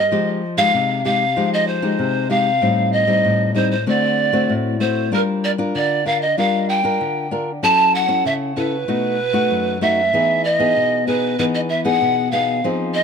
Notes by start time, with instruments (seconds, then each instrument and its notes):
Already playing: pan flute D#5
0.11 nylon-string guitar F3 G#3 D#4 G4
0.57 nylon-string guitar G#3 D#4 G4, pan flute F5
0.74 nylon-string guitar C3
1.05 nylon-string guitar G#3 D#4 G4, pan flute F5
1.36 nylon-string guitar F3 G#3 D#4 G4
1.53 pan flute D#5
1.67 pan flute C5
1.82 nylon-string guitar G#3 D#4 G4
1.99 nylon-string guitar C3
2.30 nylon-string guitar G#3 D#4 G4, pan flute F5
2.61 nylon-string guitar A2 G3 C4 D#4
2.92 pan flute D#5
3.07 nylon-string guitar G3 C4 D#4
3.24 nylon-string guitar A2
3.55 nylon-string guitar G3 C4 D#4, pan flute C5
3.71 pan flute C5
3.87 nylon-string guitar D3 A3 C4 F#4, pan flute D5
4.33 nylon-string guitar A3 C4 F#4
4.49 nylon-string guitar A2
4.80 nylon-string guitar A3 C4 F#4, pan flute C5
5.12 nylon-string guitar G3 D4 F4 A#4, pan flute A#4
5.44 pan flute D5
5.58 nylon-string guitar D4 F4 A#4
5.75 nylon-string guitar D3, pan flute D5
6.05 nylon-string guitar D4 F4 A#4, pan flute F5
6.21 pan flute D#5
6.38 nylon-string guitar G3 D4 F4 A#4, pan flute F5
6.69 pan flute G5
6.84 nylon-string guitar D4 F4 A#4
7.01 nylon-string guitar D3
7.31 nylon-string guitar D4 F4 A#4
7.63 nylon-string guitar F#3 C#4 E4 A4, pan flute A5
7.95 pan flute F#5
8.08 nylon-string guitar C#4 E4 A4
8.25 nylon-string guitar C#3, pan flute E5
8.56 nylon-string guitar C#4 E4 A4, pan flute B4
8.88 nylon-string guitar B2 A3 D#4 F#4
9.33 nylon-string guitar A3 D#4 F#4
9.51 nylon-string guitar F#2
9.81 nylon-string guitar A3 D#4 F#4, pan flute E5
10.13 nylon-string guitar E3 B3 D#4 G#4
10.44 pan flute D#5
10.59 nylon-string guitar B3 D#4 G#4
10.76 nylon-string guitar B2
11.07 nylon-string guitar B3 D#4 G#4, pan flute B4
11.38 nylon-string guitar E3 B3 D#4 G#4, pan flute B4
11.54 pan flute D#5
11.69 pan flute E5
11.84 nylon-string guitar B3 D#4 G#4, pan flute F#5
12.01 nylon-string guitar B2
12.31 nylon-string guitar B3 D#4 G#4, pan flute F5
12.64 nylon-string guitar F3 C4 D#4 G#4
12.94 pan flute D#5